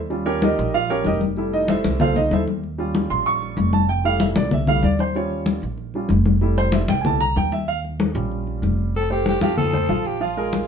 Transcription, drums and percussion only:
0.11 high conga soft
0.26 high conga soft
0.42 high conga loud
0.58 high conga soft
0.74 high conga soft
0.89 high conga soft
1.04 high conga medium
1.21 high conga medium
1.37 high conga soft
1.53 high conga soft
1.68 high conga loud
1.84 high conga loud
2.00 high conga soft
2.00 low conga loud
2.16 high conga soft
2.16 low conga medium
2.31 high conga medium
2.48 high conga medium
2.64 high conga soft
2.79 high conga soft
2.95 high conga loud
3.10 high conga soft
3.26 high conga soft
3.42 high conga soft
3.57 high conga medium
3.73 high conga medium
3.89 high conga soft
4.04 high conga soft
4.20 high conga loud
4.36 high conga loud
4.51 high conga soft
4.51 low conga medium
4.67 high conga soft
4.67 low conga medium
4.83 high conga medium
4.99 high conga medium
5.15 high conga soft
5.31 high conga soft
5.46 high conga loud
5.62 high conga soft
5.78 high conga soft
5.94 high conga soft
6.09 high conga medium
6.25 high conga medium
6.41 high conga soft
6.57 high conga soft
6.72 high conga loud
6.88 high conga loud
7.05 high conga soft
7.05 low conga loud
7.21 high conga soft
7.37 high conga medium
7.52 high conga medium
7.68 high conga soft
7.85 high conga soft
8.00 high conga loud
8.15 high conga soft
8.31 high conga soft
8.47 high conga soft
8.63 high conga medium
8.95 high conga soft
9.10 high conga soft
9.26 high conga loud
9.41 high conga medium
9.58 high conga soft
9.58 low conga medium
9.73 high conga soft
9.73 low conga medium
9.89 high conga medium
10.05 high conga soft
10.22 high conga soft
10.37 high conga soft
10.53 high conga medium

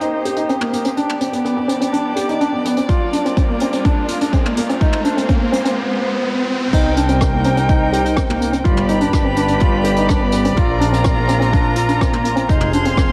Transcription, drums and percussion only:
0.01 closed hi-hat soft
0.25 closed hi-hat medium
0.36 closed hi-hat soft
0.49 closed hi-hat soft
0.61 mid tom medium
0.73 closed hi-hat medium
0.84 closed hi-hat medium
0.97 closed hi-hat soft
1.09 mid tom medium
1.21 closed hi-hat medium
1.33 closed hi-hat medium
1.45 closed hi-hat soft
1.69 closed hi-hat medium
1.81 closed hi-hat medium
1.93 closed hi-hat soft
2.16 closed hi-hat medium
2.29 closed hi-hat soft
2.41 closed hi-hat soft
2.65 closed hi-hat medium
2.77 closed hi-hat soft
2.89 kick loud
2.89 closed hi-hat soft
3.13 closed hi-hat medium
3.26 closed hi-hat medium
3.37 kick loud
3.37 closed hi-hat soft
3.60 closed hi-hat medium
3.72 closed hi-hat medium
3.85 kick loud
3.85 closed hi-hat medium
4.08 closed hi-hat medium
4.21 closed hi-hat medium
4.33 kick loud
4.33 closed hi-hat soft
4.46 mid tom medium
4.57 closed hi-hat medium
4.69 closed hi-hat soft
4.81 kick loud
4.81 closed hi-hat soft
4.93 mid tom medium
5.04 closed hi-hat medium
5.18 closed hi-hat medium
5.29 kick loud
5.29 closed hi-hat medium
5.53 closed hi-hat medium
5.65 closed hi-hat medium
6.73 kick loud
6.73 closed hi-hat soft
6.73 crash loud
6.97 closed hi-hat medium
7.08 closed hi-hat medium
7.21 kick loud
7.21 cross-stick medium
7.21 closed hi-hat soft
7.44 closed hi-hat medium
7.57 closed hi-hat medium
7.69 kick loud
7.69 closed hi-hat medium
7.93 closed hi-hat medium
8.05 closed hi-hat medium
8.16 kick medium
8.16 cross-stick loud
8.16 closed hi-hat soft
8.30 mid tom medium
8.41 closed hi-hat medium
8.53 closed hi-hat medium
8.65 kick loud
8.65 closed hi-hat soft
8.77 mid tom medium
8.88 closed hi-hat medium
9.01 closed hi-hat medium
9.13 kick loud
9.13 cross-stick medium
9.13 closed hi-hat medium
9.36 closed hi-hat medium
9.48 closed hi-hat medium
9.60 kick loud
9.60 closed hi-hat medium
9.84 closed hi-hat loud
9.96 closed hi-hat medium
10.09 kick loud
10.09 cross-stick medium
10.09 closed hi-hat soft
10.32 closed hi-hat medium
10.45 closed hi-hat medium
10.57 kick loud
10.57 closed hi-hat soft
10.81 closed hi-hat medium
10.93 closed hi-hat medium
11.04 kick loud
11.04 cross-stick loud
11.04 closed hi-hat soft
11.29 closed hi-hat medium
11.42 closed hi-hat medium
11.53 kick loud
11.53 closed hi-hat medium
11.76 closed hi-hat medium
11.88 closed hi-hat medium
12.01 kick loud
12.01 cross-stick medium
12.01 closed hi-hat soft
12.13 mid tom medium
12.25 closed hi-hat medium
12.36 closed hi-hat medium
12.49 kick loud
12.49 closed hi-hat medium
12.61 mid tom medium
12.73 closed hi-hat medium
12.85 closed hi-hat medium
12.97 kick loud
12.97 cross-stick medium
12.97 closed hi-hat soft

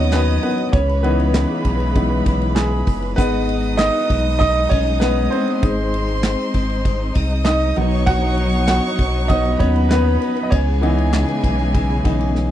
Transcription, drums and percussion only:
0.12 snare loud
0.12 clap medium
0.12 ride medium
0.43 ride medium
0.58 ride soft
0.73 kick loud
0.73 ride medium
0.89 ride soft
1.04 ride medium
1.20 ride soft
1.34 snare loud
1.34 clap loud
1.34 ride medium
1.65 kick medium
1.65 ride medium
1.80 ride soft
1.96 kick medium
1.96 ride medium
2.26 kick loud
2.26 ride medium
2.42 ride soft
2.56 snare loud
2.56 clap medium
2.56 ride medium
2.87 kick loud
2.87 snare soft
2.87 open hi-hat medium
2.87 ride medium
3.02 ride soft
3.18 kick loud
3.18 hi-hat pedal medium
3.18 ride medium
3.34 ride soft
3.49 ride medium
3.64 ride soft
3.79 snare loud
3.79 clap medium
3.79 ride medium
3.95 ride soft
4.10 kick medium
4.10 ride medium
4.26 ride soft
4.41 kick loud
4.41 ride medium
4.71 kick loud
4.71 ride medium
4.87 ride medium
5.01 snare loud
5.01 clap medium
5.01 ride medium
5.32 ride medium
5.48 ride soft
5.63 kick loud
5.63 ride medium
5.94 ride medium
6.09 ride soft
6.23 snare loud
6.23 clap medium
6.23 ride medium
6.39 ride soft
6.54 kick medium
6.54 ride medium
6.70 ride soft
6.85 kick medium
6.85 ride medium
7.15 kick loud
7.15 ride medium
7.31 ride soft
7.45 snare loud
7.45 clap medium
7.45 ride medium
7.76 ride medium
7.91 ride soft
8.07 kick loud
8.07 ride medium
8.38 ride medium
8.53 ride soft
8.68 snare loud
8.68 clap medium
8.68 ride medium
8.99 kick medium
8.99 ride medium
9.14 ride soft
9.30 kick medium
9.30 ride medium
9.45 ride soft
9.60 kick loud
9.60 ride medium
9.76 ride soft
9.91 snare loud
9.91 clap medium
9.91 ride medium
10.22 snare soft
10.22 ride medium
10.37 ride soft
10.52 kick loud
10.52 ride medium
10.83 ride medium
10.98 ride soft
11.13 snare loud
11.13 clap medium
11.13 ride medium
11.28 ride soft
11.44 kick medium
11.44 ride medium
11.60 ride soft
11.74 kick loud
11.74 ride medium
11.90 ride soft
12.05 kick loud
12.05 ride medium
12.21 ride soft
12.35 snare medium

